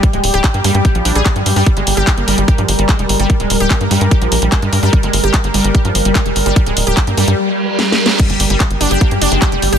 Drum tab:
CC |------------------------------------------------|------------------------------------------------|------------------------------------------------|------------------------------------------------|
HH |x--x--o--x--x--x--o--x--x--x--o--x--x--x--o--o--|x--x--o--x--x--x--o--x--x--x--o--x--x--x--o--x--|x--x--o--x--x--x--o--x--x--x--o--x--x--x--o--o--|x--x--o--x--x--x--o--x--x--x--o--x--x--x--o--x--|
CP |------------x-----------------------x-----------|------------x-----------------------x-----------|------------x-----------------------x-----------|------------x-----------------------x-----------|
SD |------------------------------------------------|------------------------------------------------|------------------------------------------------|------------------------------------------------|
BD |o-----------o-----------o-----------o-----------|o-----------o-----------o-----------o-----------|o-----------o-----------o-----------o-----------|o-----------o-----------o-----------o-----------|

CC |------------------------------------------------|x-----------------------------------------------|
HH |x--x--o--x--x--x--o--x--------------------------|x--x--o--x--x--x--o--x--x--x--o--x--x--x--o--x--|
CP |------------x-----------------------------------|------------x-----------------------x-----------|
SD |------------------------------------o---o---o---|------------------------------------------------|
BD |o-----------o-----------------------------------|o-----------o-----------o-----------o-----------|